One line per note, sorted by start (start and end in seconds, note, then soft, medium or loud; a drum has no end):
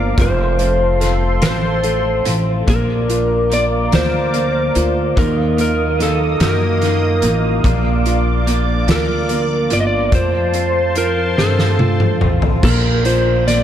0.00 0.15 G1 medium
0.00 0.17 F3 medium
0.00 0.18 A#3 medium
0.00 0.20 A#3 medium
0.00 0.18 D4 medium
0.00 0.18 F4 medium
0.00 0.20 F4 medium
0.00 0.16 A#4 medium
0.00 0.15 C5 loud
0.00 0.16 D5 medium
0.00 2.64 F5 medium
0.00 0.16 D6 medium
0.17 1.38 F1 loud
0.17 0.38 F2 medium
0.17 0.38 C3 medium
0.17 2.64 F3 medium
0.17 0.39 F3 medium
0.17 0.38 A3 medium
0.17 0.37 C4 medium
0.17 0.36 F4 medium
0.17 2.65 A4 medium
0.17 2.65 C5 medium
0.17 2.65 C6 medium
0.17 kick loud
0.17 closed hi-hat medium
0.21 0.98 C5 medium
0.37 0.57 F3 soft
0.37 0.58 A3 medium
0.37 0.59 C4 medium
0.37 0.59 F4 medium
0.58 0.99 F3 medium
0.58 1.00 A3 medium
0.58 1.41 C4 soft
0.58 1.00 C4 medium
0.58 1.01 F4 medium
0.58 closed hi-hat medium
1.00 1.41 F3 medium
1.00 1.42 A3 medium
1.00 1.42 C4 medium
1.00 1.42 F4 medium
1.00 1.83 A4 medium
1.00 snare soft
1.00 closed hi-hat medium
1.41 2.22 A1 medium
1.41 1.63 F2 medium
1.41 1.63 C3 medium
1.41 1.63 F3 medium
1.41 1.63 A3 medium
1.41 2.24 C4 medium
1.41 1.62 C4 medium
1.41 1.61 F4 medium
1.41 2.33 C5 medium
1.41 snare loud
1.41 closed hi-hat loud
1.62 1.82 F3 soft
1.62 1.83 A3 soft
1.62 1.84 C4 soft
1.62 1.83 F4 soft
1.83 2.24 F3 medium
1.83 2.24 A3 medium
1.83 2.26 C4 medium
1.83 2.26 F4 medium
1.83 2.65 A4 medium
1.83 closed hi-hat medium
2.25 2.65 A1 medium
2.25 2.66 F3 soft
2.25 2.68 A3 medium
2.25 2.66 C4 medium
2.25 2.68 C4 medium
2.25 2.67 F4 medium
2.25 closed hi-hat medium
2.67 3.89 A#1 medium
2.67 2.88 A#2 medium
2.67 2.89 F3 medium
2.67 3.50 A#3 medium
2.67 2.89 A#3 medium
2.67 2.88 D4 medium
2.67 2.86 F4 medium
2.67 5.14 A#4 medium
2.67 3.55 A#4 loud
2.67 5.14 D5 medium
2.67 12.59 F5 medium
2.67 5.14 D6 medium
2.67 kick loud
2.67 closed hi-hat medium
2.88 3.08 A#3 soft
2.88 3.09 D4 medium
2.88 3.09 F4 medium
3.08 3.49 F3 medium
3.08 3.50 A#3 medium
3.08 3.50 D4 medium
3.08 3.90 F4 soft
3.08 3.51 F4 medium
3.08 closed hi-hat medium
3.50 3.91 F3 medium
3.50 3.92 A#3 medium
3.50 4.32 A#3 soft
3.50 3.92 D4 medium
3.50 3.92 F4 medium
3.50 3.64 D5 loud
3.50 closed hi-hat medium
3.92 4.72 D2 medium
3.92 4.13 A#2 medium
3.92 4.13 F3 medium
3.92 4.13 A#3 medium
3.92 4.12 D4 medium
3.92 4.74 F4 medium
3.92 4.11 F4 medium
3.92 5.19 C5 medium
3.92 snare loud
3.92 closed hi-hat medium
4.12 4.32 A#3 soft
4.12 4.33 D4 soft
4.12 4.33 F4 medium
4.33 4.73 F3 medium
4.33 5.14 A#3 medium
4.33 4.74 A#3 medium
4.33 4.75 D4 medium
4.33 4.76 F4 medium
4.33 closed hi-hat medium
4.74 5.15 D2 loud
4.74 5.16 F3 medium
4.74 5.16 A#3 medium
4.74 5.17 D4 medium
4.74 5.16 F4 medium
4.74 closed hi-hat medium
5.16 6.37 D#2 loud
5.16 5.37 D#3 medium
5.16 7.60 D#3 medium
5.16 5.37 F#3 medium
5.16 5.37 A#3 medium
5.16 10.08 A#3 medium
5.16 5.37 D#4 medium
5.16 5.35 F4 medium
5.16 5.60 A#4 medium
5.16 7.61 D#5 medium
5.16 7.62 D#6 medium
5.16 kick loud
5.16 closed hi-hat medium
5.36 5.57 A#3 soft
5.36 5.58 D#4 soft
5.36 5.58 F4 medium
5.57 5.97 F#3 medium
5.57 7.19 A#3 soft
5.57 5.98 A#3 medium
5.57 5.99 D#4 medium
5.57 6.00 F4 medium
5.57 6.02 A#4 medium
5.57 closed hi-hat medium
5.99 6.39 F#3 medium
5.99 6.40 A#3 medium
5.99 6.80 D#4 medium
5.99 6.40 D#4 medium
5.99 6.41 F4 medium
5.99 snare soft
5.99 closed hi-hat medium
6.03 6.42 A4 medium
6.40 7.19 F#2 loud
6.40 6.61 D#3 medium
6.40 6.61 F#3 medium
6.40 6.61 A#3 medium
6.40 6.61 D#4 medium
6.40 6.60 F4 medium
6.40 7.61 F#4 medium
6.40 7.30 A#4 medium
6.40 snare loud
6.40 closed hi-hat medium
6.61 6.81 A#3 soft
6.61 6.82 D#4 soft
6.61 6.82 F4 soft
6.81 7.21 F#3 medium
6.81 7.22 A#3 medium
6.81 7.62 D#4 medium
6.81 7.23 D#4 medium
6.81 7.24 F4 medium
6.81 snare soft
6.81 closed hi-hat soft
7.22 7.62 A1 loud
7.22 7.64 F#3 medium
7.22 7.62 A#3 medium
7.22 7.64 A#3 medium
7.22 7.65 D#4 medium
7.22 7.64 F4 medium
7.22 closed hi-hat medium
7.63 8.84 A#1 loud
7.63 7.85 A#2 medium
7.63 7.85 F3 medium
7.63 8.45 A#3 medium
7.63 7.85 A#3 medium
7.63 7.84 D4 loud
7.63 7.83 F4 medium
7.63 10.10 D5 medium
7.63 10.10 D6 medium
7.63 kick loud
7.63 closed hi-hat medium
7.85 8.05 A#3 medium
7.85 8.06 D4 medium
7.85 8.05 F4 medium
8.05 8.45 F3 medium
8.05 8.46 A#3 medium
8.05 8.47 D4 medium
8.05 8.86 F4 soft
8.05 8.47 F4 medium
8.05 closed hi-hat medium
8.46 8.87 F3 medium
8.46 9.28 A#3 medium
8.46 8.87 A#3 medium
8.46 8.87 D4 medium
8.46 8.88 F4 medium
8.46 closed hi-hat medium
8.87 9.66 D2 medium
8.87 9.08 A#2 medium
8.87 9.09 F3 medium
8.87 9.09 A#3 medium
8.87 9.08 D4 medium
8.87 9.69 F4 medium
8.87 9.07 F4 medium
8.87 snare loud
8.87 closed hi-hat loud
8.91 9.75 A#4 medium
9.08 9.28 A#3 soft
9.08 9.29 D4 soft
9.08 9.29 F4 medium
9.28 9.69 F3 medium
9.28 9.70 A#3 medium
9.28 10.10 A#3 medium
9.28 9.70 D4 medium
9.28 9.71 F4 medium
9.28 closed hi-hat soft
9.70 10.10 G1 loud
9.70 10.11 F3 medium
9.70 10.12 A#3 medium
9.70 10.13 D4 medium
9.70 10.11 F4 medium
9.70 10.12 F4 medium
9.70 9.79 D5 medium
9.70 closed hi-hat medium
9.80 9.86 D#5 medium
9.87 10.14 D5 loud
10.12 10.33 F2 medium
10.12 11.33 F2 loud
10.12 10.33 C3 medium
10.12 12.59 F3 medium
10.12 10.33 F3 medium
10.12 10.33 A3 medium
10.12 10.32 C4 medium
10.12 10.31 F4 medium
10.12 12.61 C5 medium
10.12 10.97 C5 loud
10.12 12.61 A5 medium
10.12 12.61 C6 medium
10.12 kick loud
10.12 closed hi-hat medium
10.32 10.52 F3 soft
10.32 10.53 A3 soft
10.32 10.54 C4 medium
10.32 10.53 F4 medium
10.53 10.94 F3 medium
10.53 10.96 A3 medium
10.53 11.36 C4 soft
10.53 10.96 C4 medium
10.53 10.96 F4 medium
10.53 closed hi-hat medium
10.95 11.37 F3 medium
10.95 11.37 C4 medium
10.95 11.78 F4 medium
10.95 11.38 F4 medium
10.95 11.36 A#4 medium
10.95 closed hi-hat medium
11.37 11.58 F2 medium
11.37 12.17 G2 medium
11.37 11.59 C3 medium
11.37 11.59 F3 medium
11.37 11.58 A3 medium
11.37 12.19 C4 medium
11.37 11.57 C4 medium
11.37 11.56 F4 medium
11.37 12.28 A4 medium
11.37 snare medium
11.58 11.78 F3 soft
11.58 11.78 A3 soft
11.58 11.79 C4 soft
11.58 11.79 F4 soft
11.58 snare medium
11.79 12.20 F3 medium
11.79 12.21 A3 medium
11.79 12.22 C4 medium
11.79 12.61 F4 soft
11.79 12.22 F4 medium
11.79 high tom medium
12.00 mid tom medium
12.21 12.61 A1 medium
12.21 12.62 F3 medium
12.21 12.63 A3 medium
12.21 12.62 C4 medium
12.21 12.64 C4 medium
12.21 12.63 F4 medium
12.21 mid tom medium
12.42 floor tom medium
12.63 13.63 A#1 loud
12.63 12.84 A#2 medium
12.63 12.84 F3 medium
12.63 13.45 A#3 medium
12.63 12.84 A#3 medium
12.63 12.84 D4 medium
12.63 12.82 F4 medium
12.63 13.05 A#4 loud
12.63 kick loud
12.63 crash loud
12.84 13.04 A#3 medium
12.84 13.05 D4 medium
12.84 13.05 F4 medium
13.05 13.45 F3 medium
13.05 13.46 A#3 medium
13.05 13.47 D4 medium
13.05 13.63 F4 medium
13.05 13.47 F4 medium
13.05 13.44 C5 loud
13.05 closed hi-hat medium
13.46 13.63 F3 medium
13.46 13.63 A#3 medium
13.46 13.63 D4 medium
13.46 13.63 F4 medium
13.46 13.63 D5 loud
13.46 snare soft
13.46 closed hi-hat medium